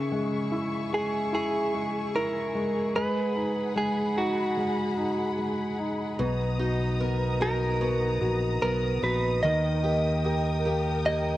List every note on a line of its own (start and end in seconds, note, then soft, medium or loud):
0.00 2.92 C#3 medium
0.00 6.16 G#4 medium
0.00 2.93 E5 medium
0.00 2.93 C#6 medium
0.12 0.91 G#3 soft
0.52 1.31 E4 soft
0.93 1.72 G#3 soft
0.93 1.34 G#4 medium
1.33 2.14 E4 medium
1.33 2.15 G#4 medium
1.74 2.53 G#3 soft
2.15 2.93 E4 soft
2.15 2.95 A#4 medium
2.55 2.94 G#3 soft
2.95 3.74 G#3 medium
2.95 3.73 B4 medium
2.95 6.16 F#5 medium
2.95 6.16 B5 medium
3.35 4.15 D#4 soft
3.76 4.56 G#3 soft
3.76 4.19 G#4 medium
4.16 4.96 D#4 soft
4.16 5.75 F#4 medium
4.57 5.37 G#3 soft
4.97 5.77 D#4 soft
5.38 6.17 G#3 soft
5.78 6.18 D#4 soft
6.19 8.18 B1 medium
6.19 9.43 B2 medium
6.19 6.99 B3 medium
6.19 9.41 B3 medium
6.19 9.41 A#5 medium
6.19 11.37 D#6 medium
6.59 7.40 D#4 soft
6.59 7.38 F#4 soft
7.00 7.79 B3 soft
7.00 8.65 A#4 medium
7.40 9.02 D#4 medium
7.40 8.20 F#4 soft
7.40 8.61 A#4 medium
7.81 9.52 F#3 soft
7.81 8.61 B3 soft
8.21 8.60 A#1 medium
8.21 9.02 F#4 soft
8.62 9.00 B1 medium
8.62 9.52 B3 soft
8.62 9.41 B3 soft
8.62 9.03 A#4 medium
9.02 9.41 A#1 medium
9.02 9.83 D#4 soft
9.02 9.42 F#4 soft
9.02 9.43 B4 medium
9.43 11.37 D#2 medium
9.43 11.37 D#3 medium
9.43 11.37 A#4 medium
9.43 11.01 D#5 medium
9.43 11.37 G5 medium
9.84 10.65 A#3 soft
9.84 10.64 G4 medium
10.25 11.04 G4 soft
10.25 11.37 A#4 soft
10.65 11.37 A#3 soft
10.65 11.37 G4 medium
11.06 11.37 A#3 soft
11.06 11.37 G4 soft
11.06 11.37 D#5 medium